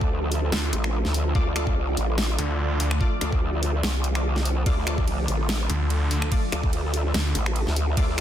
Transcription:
Already playing: wobble bass D2, supersaw synth D3 F3 A3 F4 A4
0.01 kick
0.32 open hi-hat
0.52 detuned saw bass D2, snare
0.73 wobble bass A1, closed hi-hat
0.84 finger snap
1.05 wobble bass D2, snare
1.14 open hi-hat
1.35 wobble bass D2, synth stab A3 F4 D5, supersaw synth D5, kick
1.56 synth stab A3 F4 D5, finger snap, closed hi-hat
1.67 kick
1.76 wobble bass C2
1.97 wobble bass A1, open hi-hat
2.18 snare
2.39 detuned saw bass D2, closed hi-hat
2.80 detuned saw bass D2, open hi-hat
2.91 finger snap
3.01 synth stab A3 F4 D5, kick
3.21 wobble bass D2, synth stab A3 F4 D5, finger snap, closed hi-hat
3.32 kick
3.63 open hi-hat
3.83 wobble bass C2, snare
4.04 closed hi-hat
4.15 synth stab A3 F4 D5, finger snap, closed hi-hat
4.36 snare
4.45 open hi-hat
4.66 wobble bass D2, synth stab A3 F4 D5, supersaw synth A4, kick, ride
4.87 synth stab A3 F4 D5, finger snap, closed hi-hat
4.98 kick
5.07 wobble bass C2, ride
5.28 wobble bass A1, open hi-hat
5.49 snare, ride
5.70 detuned saw bass D2, closed hi-hat
5.90 ride
6.11 detuned saw bass D2, open hi-hat
6.22 finger snap
6.32 synth stab A3 F4 D5, kick, ride
6.52 wobble bass D2, synth stab A3 F4 D5, finger snap, closed hi-hat
6.63 kick
6.73 ride
6.94 open hi-hat
7.14 detuned saw bass D2, snare, ride
7.35 wobble bass A1, closed hi-hat
7.46 finger snap
7.56 ride
7.67 wobble bass D2, snare
7.76 open hi-hat
7.97 wobble bass D2, synth stab A3 F4 D5, supersaw synth C5, kick, ride

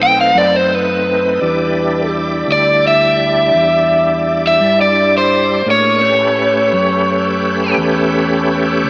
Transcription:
Already playing: fingered electric bass B1, tonewheel organ A3 C4 D#4 B4
0.03 overdriven electric guitar G5
0.21 overdriven electric guitar F5
0.35 fingered electric bass F#2, overdriven electric guitar D5
0.56 overdriven electric guitar C5
0.75 overdriven electric guitar B4
1.41 fingered electric bass E2, tonewheel organ G3 D4 E4 D5
2.48 fingered electric bass D2
2.52 overdriven electric guitar D5
2.87 overdriven electric guitar E5
3.55 fingered electric bass E2
4.47 overdriven electric guitar E5
4.61 fingered electric bass G2
4.81 overdriven electric guitar D5
5.18 overdriven electric guitar C5
5.66 fingered electric bass A2, tonewheel organ A#3 D4 G#4 C#5
5.71 overdriven electric guitar C#5
6.01 tonewheel organ A3 C#4 G4 B4
6.73 fingered electric bass F#2
7.78 fingered electric bass E2
8.84 fingered electric bass C#2

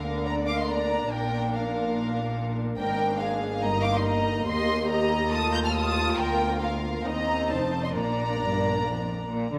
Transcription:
Already playing: double bass section D2, cello section D3, viola section A#3 D4, violin section A#4 F5
0.26 violin section D5 A#5
0.47 violin section F5 D6
0.58 violin section D#5 C6
0.69 violin section D5 A#5
1.10 double bass section A#1, cello section A#2, violin section A#4 G5
1.53 violin section A#4 F5
2.78 double bass section G#1, cello section G#2, viola section A#3 D4, violin section A#4 G5
3.19 violin section G#4 F5
3.62 double bass section G1, cello section G2, viola section D#4, violin section D#5 A#5
3.83 violin section F5 D6
3.95 violin section D#5 C6
4.05 violin section D#5 A#5
4.47 double bass section D#2, cello section D#2, viola section G4, violin section D#5 C6
4.89 violin section D#5 A#5
5.32 viola section A3 F4, violin section A5 D#6
5.53 violin section A#5 G6
5.64 violin section A5 F6
5.75 violin section A5 D#6
6.18 double bass section D2, cello section D2, viola section A#3, violin section A#4 G5
6.62 violin section A#4 F5
7.04 cello section D#2, double bass section D#2, viola section C4 D#4, violin section D#5 A#5
7.49 double bass section F1, cello section F2, violin section C5 A5
7.84 violin section D#5 C6
7.94 double bass section A#1, cello section A#2, viola section A#3 D4, violin section D5 A#5
8.40 cello section G2
8.85 cello section F2
9.29 cello section A#2
9.52 cello section D3

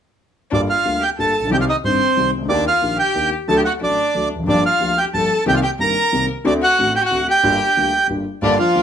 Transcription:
0.51 grand piano G1 G2 D3 G3 A#3 F4, violin D4, bandoneon D5
0.68 violin F4, bandoneon F5
0.85 grand piano D2 D3 G3 A#3 F4
1.01 violin G4, bandoneon G5
1.17 grand piano G1 G2 D3 G3 A#3 F4, violin A4, bandoneon A5
1.39 grand piano A1 A#1
1.47 grand piano B1 D#3
1.51 grand piano C2 C3 G3 C4 G4, violin G4, bandoneon G5
1.60 violin F4, bandoneon F5
1.69 violin D#4, bandoneon D#5
1.84 grand piano G1 G2 D#3 G3 C4 G4, violin C4, bandoneon C5
2.17 grand piano C2 C3 D#3 G3 C4 G4
2.37 grand piano C2 C#2
2.45 grand piano D2 D#2 D#3 A#3
2.49 grand piano D4 G4, violin D4, bandoneon D5
2.66 violin F4, bandoneon F5
2.82 grand piano A#1 A#2 D#3 A#3 D4 G4
2.99 violin G4, bandoneon G5
3.15 grand piano D#2 D#3 A#3 D4 G4
3.48 grand piano D2 D3 F#3 A3 D4 A4, violin A4, bandoneon A5
3.57 violin G4, bandoneon G5
3.65 violin F#4, bandoneon F#5
3.80 grand piano A1 A2 F#3 A3 D4 A4, violin D4, bandoneon D5
4.15 grand piano D2 D3 F#3 A3 D4 A4
4.35 grand piano E2
4.40 grand piano F2 F#2
4.47 grand piano G1 G2 F3 A#3 D4 G4, violin D4, bandoneon D5
4.65 violin F4, bandoneon F5
4.80 grand piano D2 D3 F3 A#3 D4 G4
4.98 violin G4, bandoneon G5
5.13 grand piano G1 G2 F3 A#3 D4 G4, violin A4, bandoneon A5
5.46 grand piano C2 C3 D#3 A#3 C4 G4, violin G4, bandoneon G5
5.54 violin F4, bandoneon F5
5.62 violin G4, bandoneon G5
5.79 grand piano G1 G2 D#3 A#3 C4 G4, violin A#4, bandoneon A#5
6.12 grand piano C2 C3 D#3 A#3 C4 G4
6.44 grand piano D2 D3 A3 C4 F#4, violin D4, bandoneon D5
6.61 violin F#4, bandoneon F#5
6.79 grand piano A1 A2 D3 A3 C4 F#4
6.96 violin G4, bandoneon G5
7.04 violin F#4, bandoneon F#5
7.11 grand piano D2 D3 A3 C4 F#4
7.28 violin G4, bandoneon G5
7.43 grand piano G1 G2 D3 G3 A#3 F4
7.77 grand piano D2 D3 G3 A#3 F4
8.09 grand piano G1 G2 D3 G3 A#3 F4
8.42 grand piano G1 G2 D3 G3 A#3 F4, bandoneon D3 D4, string section A#3 F4 G4, violin D5
8.58 bandoneon F3 F4, violin F5
8.75 grand piano D2 D3 G3 A#3 F4, string section A#3 F4 G4

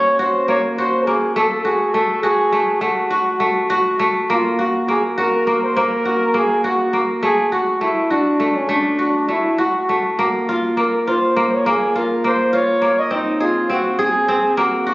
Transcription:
Already playing: kora A#3 C#4 F#4, flugelhorn C#5
0.19 kora F#4, flugelhorn C5
0.48 kora A#3, flugelhorn C#5
0.76 kora F#4, flugelhorn C5
1.05 kora A#3, flugelhorn G#4
1.34 kora A3, flugelhorn A4
1.65 kora F#4, flugelhorn G#4
1.93 kora A3, flugelhorn A4
2.22 kora F#4, flugelhorn G#4
2.52 kora A3
2.81 kora A3, flugelhorn F#4
3.10 kora F#4
3.40 kora A3
3.70 kora F#4
4.00 kora A3
4.30 kora A#3, flugelhorn F4
4.59 kora F#4, flugelhorn F#4
4.88 kora A#3, flugelhorn G#4
5.18 kora F#4, flugelhorn A#4
5.47 kora A#3
5.63 flugelhorn C5
5.77 kora A#3, flugelhorn A#4
6.05 kora F#4
6.34 kora A#3, flugelhorn G#4
6.64 kora F#4, flugelhorn F#4
6.93 kora A#3
7.23 kora A3, flugelhorn G#4
7.52 flugelhorn F#4, kora F#4
7.81 kora A3, flugelhorn E4
8.10 flugelhorn D4, kora F#4
8.40 kora A3
8.55 flugelhorn C#4
8.69 kora A3, flugelhorn D4
8.99 kora F#4
9.29 kora A3, flugelhorn E4
9.58 kora F#4, flugelhorn F#4
9.89 kora A3
10.19 kora A#3, flugelhorn F#4
10.49 kora F4
10.77 kora A#3, flugelhorn A#4
11.07 kora F4, flugelhorn C5
11.36 kora A#3
11.53 flugelhorn C#5
11.66 kora A#3, flugelhorn G#4
11.96 kora F4, flugelhorn A#4
12.24 kora A#3, flugelhorn C5
12.53 kora F4, flugelhorn C#5
12.82 kora A#3
12.99 flugelhorn D#5
13.11 kora C4, flugelhorn D#4
13.40 flugelhorn F4, kora G#4
13.70 kora C4, flugelhorn F#4
13.99 kora G#4, flugelhorn G#4
14.28 kora C4
14.57 kora A#3, flugelhorn F#4
14.87 kora F#4

